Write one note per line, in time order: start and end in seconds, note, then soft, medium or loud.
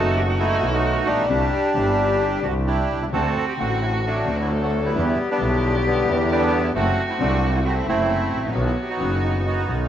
0.00 0.58 F#1 medium
0.00 0.59 F#1 medium
0.00 0.59 F#2 medium
0.00 0.58 D#3 medium
0.00 0.24 A3 medium
0.00 0.58 A3 medium
0.00 0.59 B3 medium
0.00 0.70 D#4 medium
0.00 0.28 F#4 medium
0.00 0.60 F#4 medium
0.00 1.30 F#4 medium
0.00 0.15 A4 medium
0.17 0.22 G4 medium
0.30 0.34 F#4 medium
0.39 0.72 A3 medium
0.39 0.74 E4 medium
0.60 1.23 B1 medium
0.60 1.06 B1 medium
0.60 1.26 B2 medium
0.60 1.25 D#3 medium
0.60 1.26 A3 medium
0.60 1.26 B3 medium
0.60 1.27 F#4 medium
0.73 1.26 A3 medium
0.73 1.26 D#4 medium
0.73 1.08 F#4 medium
1.06 1.30 A#1 medium
1.06 2.40 G3 medium
1.06 2.47 D4 medium
1.13 1.18 A1 soft
1.19 1.24 A#1 medium
1.25 1.30 B1 medium
1.29 1.49 C2 medium
1.29 1.48 C3 medium
1.29 1.49 D3 medium
1.29 1.49 G3 medium
1.29 1.49 C4 medium
1.29 1.49 E4 medium
1.29 1.73 G4 medium
1.73 2.41 G1 medium
1.73 2.41 G2 medium
1.73 2.40 D3 medium
1.73 2.40 G3 medium
1.73 2.41 C4 medium
1.73 2.85 G4 medium
1.78 2.42 E4 medium
2.42 3.01 C2 medium
2.42 2.90 C2 medium
2.42 3.10 C3 medium
2.42 3.09 D3 medium
2.42 3.09 G3 soft
2.42 3.10 C4 soft
2.42 3.11 E4 medium
2.42 2.54 F#4 medium
2.67 3.10 D4 medium
2.67 3.00 E4 medium
2.67 3.03 G4 medium
2.91 3.13 C2 medium
2.96 3.02 B1 soft
3.02 3.08 C2 soft
3.02 3.07 E4 medium
3.08 3.13 C#2 medium
3.08 4.52 F#4 medium
3.13 3.32 D2 medium
3.13 3.33 D2 medium
3.13 3.32 D3 medium
3.13 3.32 A3 medium
3.13 3.32 C4 medium
3.13 4.00 C4 medium
3.13 3.32 C4 soft
3.13 3.32 D4 medium
3.13 3.32 F#4 medium
3.13 3.59 F#4 medium
3.13 3.33 F#4 medium
3.13 3.45 A4 medium
3.49 3.53 G4 medium
3.57 4.24 A1 medium
3.57 4.24 A2 medium
3.57 4.23 D3 medium
3.57 4.24 A3 medium
3.57 4.23 C4 medium
3.57 4.24 C4 medium
3.57 4.24 D4 medium
3.57 4.24 F#4 medium
3.57 3.81 F#4 medium
3.61 4.25 F#4 medium
3.82 3.86 E4 medium
3.91 3.94 G4 medium
3.96 4.00 F#4 medium
4.06 4.92 F#3 medium
4.06 4.93 A3 medium
4.06 4.37 D4 medium
4.25 4.92 D2 medium
4.25 4.92 D3 medium
4.25 4.92 A3 soft
4.25 4.92 C4 medium
4.25 4.92 C4 soft
4.25 4.92 D4 medium
4.25 4.92 F#4 medium
4.29 4.93 F#4 medium
4.41 4.50 E4 medium
4.50 4.96 A4 medium
4.63 4.73 F#4 medium
4.85 5.30 G3 medium
4.85 5.29 B3 soft
4.85 5.06 E4 medium
4.95 5.14 E2 medium
4.95 5.15 E2 medium
4.95 5.14 D3 medium
4.95 5.14 E3 medium
4.95 5.14 G3 medium
4.95 5.14 B3 medium
4.95 5.15 D4 medium
4.95 5.14 E4 medium
4.95 6.75 G4 medium
4.95 5.15 G4 medium
5.09 5.18 E4 medium
5.30 5.85 G3 medium
5.30 5.73 B3 medium
5.30 5.76 D4 medium
5.38 6.04 B1 medium
5.38 6.05 B1 medium
5.38 6.04 B2 medium
5.38 6.03 D3 medium
5.38 6.04 G3 medium
5.38 6.04 B3 medium
5.38 6.04 D4 medium
5.38 6.05 E4 medium
5.38 6.05 G4 medium
5.74 5.85 B3 medium
5.86 6.72 D3 medium
5.86 6.72 G3 medium
5.86 6.17 B3 medium
6.06 6.72 E2 medium
6.06 6.71 D3 medium
6.06 6.72 E3 medium
6.06 6.71 G3 medium
6.06 6.72 B3 medium
6.06 6.72 D4 medium
6.06 6.72 E4 medium
6.06 6.73 E4 medium
6.06 6.72 G4 medium
6.20 6.25 D4 medium
6.32 6.73 B3 medium
6.32 6.73 D4 medium
6.32 6.62 G4 medium
6.63 6.68 E4 medium
6.75 6.94 F#1 medium
6.75 6.94 F#2 medium
6.75 6.94 C3 medium
6.75 6.94 F#3 medium
6.75 6.94 A3 medium
6.75 7.19 A3 medium
6.75 6.94 A3 medium
6.75 7.61 C4 medium
6.75 6.94 E4 medium
6.75 6.94 F#4 medium
6.75 7.06 F#4 medium
6.75 7.67 F#4 loud
7.10 7.14 E4 medium
7.19 7.83 C2 medium
7.19 7.84 C2 medium
7.19 7.84 C3 medium
7.19 7.83 F#3 medium
7.19 7.83 A3 medium
7.19 7.84 A3 medium
7.19 7.64 A3 medium
7.19 7.51 D4 medium
7.19 7.83 E4 medium
7.19 7.85 E4 medium
7.19 7.83 F#4 medium
7.55 7.60 E4 medium
7.65 7.87 A3 medium
7.65 7.87 C4 medium
7.65 8.09 E4 medium
7.65 7.75 F#4 medium
7.85 8.32 F#1 medium
7.85 8.51 F#2 medium
7.85 8.50 C3 medium
7.85 8.51 F#3 medium
7.85 8.50 A3 medium
7.85 8.51 A3 medium
7.85 8.51 C4 medium
7.85 8.50 E4 medium
7.85 8.40 E4 medium
7.85 8.50 F#4 medium
7.90 8.52 E4 medium
8.10 8.55 E4 medium
8.32 8.54 A1 medium
8.37 8.43 G#1 soft
8.43 8.48 A1 medium
8.43 9.30 F#3 medium
8.43 8.89 B3 medium
8.43 8.55 D#4 medium
8.48 8.54 A#1 medium
8.53 8.73 B1 medium
8.53 8.73 B2 medium
8.53 8.73 D#3 medium
8.53 8.73 F#3 medium
8.53 8.73 B3 medium
8.53 8.73 D#4 medium
8.53 8.73 F#4 medium
8.53 9.88 F#4 medium
8.53 8.73 F#4 medium
8.66 8.73 E4 medium
8.82 8.89 G4 soft
8.89 9.45 B3 medium
8.89 9.22 D#4 soft
8.89 9.23 F#4 medium
8.97 9.64 F#1 medium
8.97 9.65 F#1 medium
8.97 9.65 F#2 medium
8.97 9.63 D#3 medium
8.97 9.64 F#3 medium
8.97 9.64 B3 medium
8.97 9.65 B3 medium
8.97 9.64 D#4 medium
8.97 9.65 F#4 medium
9.23 9.44 D#4 medium
9.47 9.88 B3 medium
9.47 9.88 D#4 medium
9.47 9.67 F#4 medium
9.67 9.88 B1 medium
9.67 9.88 B2 medium
9.67 9.88 D#3 medium
9.67 9.88 F#3 soft
9.67 9.88 B3 medium
9.67 9.88 B3 soft
9.67 9.88 D#4 medium
9.67 9.88 F#4 medium
9.67 9.79 F#4 medium
9.67 9.88 F#4 medium